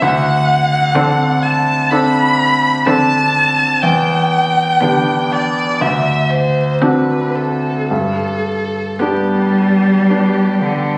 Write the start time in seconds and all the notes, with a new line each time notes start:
0.02 D2 F#5
0.95 D3 C4 D4 A4
1.42 A5
1.90 C4 D4 A4 B5
2.87 D3 C4 D4 A4 A5
3.82 E2 G5
4.81 D3 B3 D4 G4
5.32 D5
5.81 D2 E5
6.30 C5
6.81 D3 C4 D4 F#4 B4
7.35 A4
7.89 G2 A4
8.99 G3 B3 D4 G4
10.09 B3 D4 G4
10.61 D3